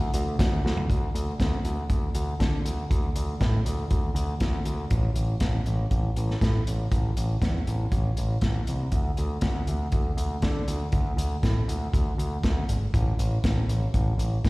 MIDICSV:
0, 0, Header, 1, 3, 480
1, 0, Start_track
1, 0, Tempo, 502092
1, 849, Time_signature, 4, 2, 24, 8
1, 13856, End_track
2, 0, Start_track
2, 0, Title_t, "Picked electric bass"
2, 0, Program_c, 0, 34
2, 0, Note_on_c, 0, 38, 84
2, 98, Note_off_c, 0, 38, 0
2, 135, Note_on_c, 0, 38, 83
2, 337, Note_off_c, 0, 38, 0
2, 373, Note_on_c, 0, 38, 76
2, 576, Note_off_c, 0, 38, 0
2, 619, Note_on_c, 0, 38, 81
2, 819, Note_off_c, 0, 38, 0
2, 857, Note_on_c, 0, 38, 80
2, 1032, Note_off_c, 0, 38, 0
2, 1096, Note_on_c, 0, 38, 82
2, 1271, Note_off_c, 0, 38, 0
2, 1338, Note_on_c, 0, 38, 77
2, 1512, Note_off_c, 0, 38, 0
2, 1579, Note_on_c, 0, 38, 78
2, 1753, Note_off_c, 0, 38, 0
2, 1813, Note_on_c, 0, 38, 71
2, 1989, Note_off_c, 0, 38, 0
2, 2059, Note_on_c, 0, 38, 78
2, 2233, Note_off_c, 0, 38, 0
2, 2293, Note_on_c, 0, 50, 75
2, 2469, Note_off_c, 0, 50, 0
2, 2536, Note_on_c, 0, 38, 68
2, 2711, Note_off_c, 0, 38, 0
2, 2777, Note_on_c, 0, 38, 76
2, 2952, Note_off_c, 0, 38, 0
2, 3021, Note_on_c, 0, 38, 73
2, 3195, Note_off_c, 0, 38, 0
2, 3256, Note_on_c, 0, 45, 87
2, 3431, Note_off_c, 0, 45, 0
2, 3494, Note_on_c, 0, 38, 77
2, 3670, Note_off_c, 0, 38, 0
2, 3735, Note_on_c, 0, 38, 67
2, 3910, Note_off_c, 0, 38, 0
2, 3966, Note_on_c, 0, 38, 84
2, 4145, Note_off_c, 0, 38, 0
2, 4217, Note_on_c, 0, 38, 81
2, 4392, Note_off_c, 0, 38, 0
2, 4453, Note_on_c, 0, 38, 76
2, 4629, Note_off_c, 0, 38, 0
2, 4693, Note_on_c, 0, 33, 86
2, 4869, Note_off_c, 0, 33, 0
2, 4933, Note_on_c, 0, 33, 67
2, 5109, Note_off_c, 0, 33, 0
2, 5170, Note_on_c, 0, 33, 81
2, 5347, Note_off_c, 0, 33, 0
2, 5421, Note_on_c, 0, 33, 75
2, 5594, Note_off_c, 0, 33, 0
2, 5650, Note_on_c, 0, 33, 74
2, 5827, Note_off_c, 0, 33, 0
2, 5900, Note_on_c, 0, 33, 76
2, 6073, Note_off_c, 0, 33, 0
2, 6132, Note_on_c, 0, 45, 74
2, 6308, Note_off_c, 0, 45, 0
2, 6384, Note_on_c, 0, 33, 70
2, 6555, Note_off_c, 0, 33, 0
2, 6609, Note_on_c, 0, 33, 91
2, 6786, Note_off_c, 0, 33, 0
2, 6856, Note_on_c, 0, 33, 72
2, 7030, Note_off_c, 0, 33, 0
2, 7090, Note_on_c, 0, 40, 80
2, 7266, Note_off_c, 0, 40, 0
2, 7338, Note_on_c, 0, 33, 81
2, 7511, Note_off_c, 0, 33, 0
2, 7568, Note_on_c, 0, 33, 81
2, 7745, Note_off_c, 0, 33, 0
2, 7823, Note_on_c, 0, 33, 84
2, 7995, Note_off_c, 0, 33, 0
2, 8049, Note_on_c, 0, 33, 70
2, 8225, Note_off_c, 0, 33, 0
2, 8305, Note_on_c, 0, 36, 72
2, 8475, Note_off_c, 0, 36, 0
2, 8525, Note_on_c, 0, 38, 78
2, 8703, Note_off_c, 0, 38, 0
2, 8781, Note_on_c, 0, 38, 77
2, 8953, Note_off_c, 0, 38, 0
2, 9005, Note_on_c, 0, 38, 86
2, 9182, Note_off_c, 0, 38, 0
2, 9261, Note_on_c, 0, 38, 73
2, 9433, Note_off_c, 0, 38, 0
2, 9485, Note_on_c, 0, 38, 77
2, 9663, Note_off_c, 0, 38, 0
2, 9725, Note_on_c, 0, 38, 79
2, 9902, Note_off_c, 0, 38, 0
2, 9966, Note_on_c, 0, 50, 69
2, 10143, Note_off_c, 0, 50, 0
2, 10210, Note_on_c, 0, 38, 77
2, 10386, Note_off_c, 0, 38, 0
2, 10447, Note_on_c, 0, 38, 82
2, 10624, Note_off_c, 0, 38, 0
2, 10678, Note_on_c, 0, 38, 80
2, 10858, Note_off_c, 0, 38, 0
2, 10928, Note_on_c, 0, 45, 83
2, 11104, Note_off_c, 0, 45, 0
2, 11167, Note_on_c, 0, 38, 84
2, 11344, Note_off_c, 0, 38, 0
2, 11411, Note_on_c, 0, 38, 76
2, 11586, Note_off_c, 0, 38, 0
2, 11646, Note_on_c, 0, 38, 78
2, 11823, Note_off_c, 0, 38, 0
2, 11892, Note_on_c, 0, 38, 74
2, 12067, Note_off_c, 0, 38, 0
2, 12125, Note_on_c, 0, 32, 78
2, 12303, Note_off_c, 0, 32, 0
2, 12370, Note_on_c, 0, 33, 83
2, 12546, Note_off_c, 0, 33, 0
2, 12608, Note_on_c, 0, 33, 76
2, 12785, Note_off_c, 0, 33, 0
2, 12846, Note_on_c, 0, 33, 88
2, 13024, Note_off_c, 0, 33, 0
2, 13079, Note_on_c, 0, 33, 71
2, 13260, Note_off_c, 0, 33, 0
2, 13326, Note_on_c, 0, 33, 80
2, 13505, Note_off_c, 0, 33, 0
2, 13554, Note_on_c, 0, 33, 80
2, 13737, Note_off_c, 0, 33, 0
2, 13810, Note_on_c, 0, 45, 75
2, 13856, Note_off_c, 0, 45, 0
2, 13856, End_track
3, 0, Start_track
3, 0, Title_t, "Drums"
3, 130, Note_on_c, 9, 42, 62
3, 226, Note_off_c, 9, 42, 0
3, 376, Note_on_c, 9, 36, 100
3, 376, Note_on_c, 9, 42, 83
3, 386, Note_on_c, 9, 38, 103
3, 471, Note_off_c, 9, 36, 0
3, 472, Note_off_c, 9, 42, 0
3, 482, Note_off_c, 9, 38, 0
3, 631, Note_on_c, 9, 38, 65
3, 727, Note_off_c, 9, 38, 0
3, 738, Note_on_c, 9, 43, 88
3, 833, Note_off_c, 9, 43, 0
3, 857, Note_on_c, 9, 36, 98
3, 863, Note_on_c, 9, 42, 56
3, 952, Note_off_c, 9, 36, 0
3, 958, Note_off_c, 9, 42, 0
3, 1104, Note_on_c, 9, 42, 56
3, 1199, Note_off_c, 9, 42, 0
3, 1336, Note_on_c, 9, 36, 98
3, 1339, Note_on_c, 9, 42, 59
3, 1348, Note_on_c, 9, 38, 109
3, 1431, Note_off_c, 9, 36, 0
3, 1434, Note_off_c, 9, 42, 0
3, 1444, Note_off_c, 9, 38, 0
3, 1575, Note_on_c, 9, 42, 57
3, 1671, Note_off_c, 9, 42, 0
3, 1813, Note_on_c, 9, 42, 54
3, 1814, Note_on_c, 9, 36, 94
3, 1909, Note_off_c, 9, 36, 0
3, 1909, Note_off_c, 9, 42, 0
3, 2052, Note_on_c, 9, 42, 57
3, 2147, Note_off_c, 9, 42, 0
3, 2297, Note_on_c, 9, 36, 92
3, 2297, Note_on_c, 9, 42, 56
3, 2307, Note_on_c, 9, 38, 96
3, 2393, Note_off_c, 9, 36, 0
3, 2393, Note_off_c, 9, 42, 0
3, 2403, Note_off_c, 9, 38, 0
3, 2540, Note_on_c, 9, 42, 64
3, 2635, Note_off_c, 9, 42, 0
3, 2780, Note_on_c, 9, 36, 96
3, 2782, Note_on_c, 9, 42, 58
3, 2876, Note_off_c, 9, 36, 0
3, 2878, Note_off_c, 9, 42, 0
3, 3018, Note_on_c, 9, 42, 56
3, 3113, Note_off_c, 9, 42, 0
3, 3256, Note_on_c, 9, 42, 53
3, 3258, Note_on_c, 9, 36, 97
3, 3265, Note_on_c, 9, 38, 95
3, 3351, Note_off_c, 9, 42, 0
3, 3354, Note_off_c, 9, 36, 0
3, 3361, Note_off_c, 9, 38, 0
3, 3498, Note_on_c, 9, 42, 57
3, 3594, Note_off_c, 9, 42, 0
3, 3734, Note_on_c, 9, 42, 50
3, 3737, Note_on_c, 9, 36, 89
3, 3829, Note_off_c, 9, 42, 0
3, 3832, Note_off_c, 9, 36, 0
3, 3976, Note_on_c, 9, 42, 51
3, 4072, Note_off_c, 9, 42, 0
3, 4209, Note_on_c, 9, 42, 52
3, 4214, Note_on_c, 9, 36, 97
3, 4219, Note_on_c, 9, 38, 99
3, 4305, Note_off_c, 9, 42, 0
3, 4309, Note_off_c, 9, 36, 0
3, 4315, Note_off_c, 9, 38, 0
3, 4449, Note_on_c, 9, 42, 53
3, 4545, Note_off_c, 9, 42, 0
3, 4689, Note_on_c, 9, 42, 56
3, 4693, Note_on_c, 9, 36, 104
3, 4785, Note_off_c, 9, 42, 0
3, 4789, Note_off_c, 9, 36, 0
3, 4929, Note_on_c, 9, 42, 56
3, 5024, Note_off_c, 9, 42, 0
3, 5164, Note_on_c, 9, 42, 60
3, 5170, Note_on_c, 9, 36, 96
3, 5174, Note_on_c, 9, 38, 91
3, 5260, Note_off_c, 9, 42, 0
3, 5265, Note_off_c, 9, 36, 0
3, 5269, Note_off_c, 9, 38, 0
3, 5410, Note_on_c, 9, 42, 48
3, 5506, Note_off_c, 9, 42, 0
3, 5649, Note_on_c, 9, 42, 47
3, 5650, Note_on_c, 9, 36, 85
3, 5744, Note_off_c, 9, 42, 0
3, 5746, Note_off_c, 9, 36, 0
3, 5893, Note_on_c, 9, 42, 49
3, 5988, Note_off_c, 9, 42, 0
3, 6026, Note_on_c, 9, 38, 28
3, 6122, Note_off_c, 9, 38, 0
3, 6132, Note_on_c, 9, 36, 94
3, 6134, Note_on_c, 9, 42, 58
3, 6144, Note_on_c, 9, 38, 94
3, 6227, Note_off_c, 9, 36, 0
3, 6230, Note_off_c, 9, 42, 0
3, 6239, Note_off_c, 9, 38, 0
3, 6377, Note_on_c, 9, 42, 62
3, 6472, Note_off_c, 9, 42, 0
3, 6611, Note_on_c, 9, 42, 62
3, 6612, Note_on_c, 9, 36, 93
3, 6707, Note_off_c, 9, 42, 0
3, 6708, Note_off_c, 9, 36, 0
3, 6853, Note_on_c, 9, 42, 56
3, 6949, Note_off_c, 9, 42, 0
3, 7090, Note_on_c, 9, 36, 97
3, 7093, Note_on_c, 9, 42, 55
3, 7102, Note_on_c, 9, 38, 99
3, 7186, Note_off_c, 9, 36, 0
3, 7188, Note_off_c, 9, 42, 0
3, 7198, Note_off_c, 9, 38, 0
3, 7334, Note_on_c, 9, 42, 53
3, 7430, Note_off_c, 9, 42, 0
3, 7569, Note_on_c, 9, 42, 56
3, 7570, Note_on_c, 9, 36, 94
3, 7665, Note_off_c, 9, 36, 0
3, 7665, Note_off_c, 9, 42, 0
3, 7810, Note_on_c, 9, 42, 55
3, 7905, Note_off_c, 9, 42, 0
3, 8044, Note_on_c, 9, 42, 48
3, 8049, Note_on_c, 9, 36, 90
3, 8053, Note_on_c, 9, 38, 93
3, 8139, Note_off_c, 9, 42, 0
3, 8145, Note_off_c, 9, 36, 0
3, 8149, Note_off_c, 9, 38, 0
3, 8290, Note_on_c, 9, 42, 52
3, 8385, Note_off_c, 9, 42, 0
3, 8525, Note_on_c, 9, 42, 58
3, 8528, Note_on_c, 9, 36, 89
3, 8620, Note_off_c, 9, 42, 0
3, 8624, Note_off_c, 9, 36, 0
3, 8768, Note_on_c, 9, 42, 48
3, 8864, Note_off_c, 9, 42, 0
3, 8998, Note_on_c, 9, 42, 58
3, 9006, Note_on_c, 9, 36, 106
3, 9008, Note_on_c, 9, 38, 110
3, 9094, Note_off_c, 9, 42, 0
3, 9102, Note_off_c, 9, 36, 0
3, 9104, Note_off_c, 9, 38, 0
3, 9247, Note_on_c, 9, 42, 51
3, 9343, Note_off_c, 9, 42, 0
3, 9482, Note_on_c, 9, 42, 53
3, 9488, Note_on_c, 9, 36, 95
3, 9577, Note_off_c, 9, 42, 0
3, 9584, Note_off_c, 9, 36, 0
3, 9729, Note_on_c, 9, 42, 54
3, 9825, Note_off_c, 9, 42, 0
3, 9963, Note_on_c, 9, 42, 50
3, 9966, Note_on_c, 9, 36, 90
3, 9973, Note_on_c, 9, 38, 105
3, 10059, Note_off_c, 9, 42, 0
3, 10062, Note_off_c, 9, 36, 0
3, 10068, Note_off_c, 9, 38, 0
3, 10208, Note_on_c, 9, 42, 59
3, 10304, Note_off_c, 9, 42, 0
3, 10440, Note_on_c, 9, 42, 55
3, 10446, Note_on_c, 9, 36, 104
3, 10536, Note_off_c, 9, 42, 0
3, 10542, Note_off_c, 9, 36, 0
3, 10692, Note_on_c, 9, 42, 60
3, 10788, Note_off_c, 9, 42, 0
3, 10928, Note_on_c, 9, 36, 102
3, 10929, Note_on_c, 9, 42, 54
3, 10939, Note_on_c, 9, 38, 97
3, 11024, Note_off_c, 9, 36, 0
3, 11025, Note_off_c, 9, 42, 0
3, 11034, Note_off_c, 9, 38, 0
3, 11175, Note_on_c, 9, 42, 52
3, 11270, Note_off_c, 9, 42, 0
3, 11410, Note_on_c, 9, 36, 93
3, 11416, Note_on_c, 9, 42, 58
3, 11506, Note_off_c, 9, 36, 0
3, 11511, Note_off_c, 9, 42, 0
3, 11657, Note_on_c, 9, 42, 53
3, 11752, Note_off_c, 9, 42, 0
3, 11887, Note_on_c, 9, 42, 57
3, 11888, Note_on_c, 9, 36, 97
3, 11897, Note_on_c, 9, 38, 96
3, 11983, Note_off_c, 9, 42, 0
3, 11984, Note_off_c, 9, 36, 0
3, 11992, Note_off_c, 9, 38, 0
3, 12130, Note_on_c, 9, 42, 58
3, 12226, Note_off_c, 9, 42, 0
3, 12369, Note_on_c, 9, 36, 109
3, 12372, Note_on_c, 9, 42, 56
3, 12465, Note_off_c, 9, 36, 0
3, 12467, Note_off_c, 9, 42, 0
3, 12611, Note_on_c, 9, 42, 56
3, 12706, Note_off_c, 9, 42, 0
3, 12847, Note_on_c, 9, 42, 55
3, 12848, Note_on_c, 9, 36, 110
3, 12857, Note_on_c, 9, 38, 98
3, 12943, Note_off_c, 9, 36, 0
3, 12943, Note_off_c, 9, 42, 0
3, 12952, Note_off_c, 9, 38, 0
3, 13091, Note_on_c, 9, 42, 52
3, 13187, Note_off_c, 9, 42, 0
3, 13327, Note_on_c, 9, 42, 49
3, 13328, Note_on_c, 9, 36, 93
3, 13422, Note_off_c, 9, 42, 0
3, 13423, Note_off_c, 9, 36, 0
3, 13569, Note_on_c, 9, 42, 54
3, 13664, Note_off_c, 9, 42, 0
3, 13810, Note_on_c, 9, 36, 89
3, 13812, Note_on_c, 9, 42, 49
3, 13822, Note_on_c, 9, 38, 96
3, 13856, Note_off_c, 9, 36, 0
3, 13856, Note_off_c, 9, 38, 0
3, 13856, Note_off_c, 9, 42, 0
3, 13856, End_track
0, 0, End_of_file